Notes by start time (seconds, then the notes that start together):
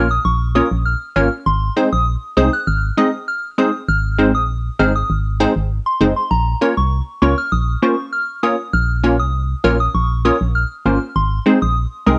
Already playing: A#1
0.11 D#6
0.25 A#1 C#6
0.55 A#3 C#4 F4 A#4 C#5 D#6
0.71 A#1
0.85 F6
1.16 G#1 A#3 C#4 F4 A#4 C#5 F6
1.46 G#1 C6
1.76 G#3 C4 D#4 G#4 C5
1.92 A#1 D#6
2.37 C2 G#3 C4 D#4 G#4 C5 D#6
2.53 F#6
2.67 G#1 F6
2.97 G#3 C4 D#4 G#4 D#5 D#6
3.28 F6
3.58 G#3 C4 D#4 G#4 C5 D#6
3.89 G#1 F6
4.19 G#3 C4 D#4 G#4 C5
4.35 A#1 D#6
4.79 G#1 G#3 C4 D#4 G#4 C5 F6
4.96 D#6
5.10 G#1
5.40 G#3 C4 D#4 G#4 C5
5.56 G#1
5.86 C6
6.01 F#1 G#3 C4 D#4 G#4 C5
6.16 C6
6.31 A#1 A#5
6.61 A#3 C#4 F4 A#4 C#5
6.77 C2 C#6
7.22 C#2 A#3 C#4 F4 A#4 C#5 C#6
7.38 F6
7.52 A#1 D#6
7.82 A#3 C#4 F4 A#4 C5 C#6
8.12 F6
8.43 A#3 C#4 F4 A#4 C#5 D#6
8.73 A#1 F6
9.04 A#3 C#4 F4 A#4 C#5
9.20 C2 D#6
9.64 A#1 A#3 C#4 F4 A#4 C#5 F6
9.80 D#6
9.94 A#1 C#6
10.25 A#3 C#4 F4 A#4 C#5 D#6
10.41 A#1
10.55 F6
10.86 G#1 A#3 C#4 F4 A#4 C5 F6
11.16 G#1 C6
11.46 G#3 C4 D#4 G#4 C5
11.62 A#1 D#6
12.06 C2 G#3 C4 D#4 G#4 A#4 D#6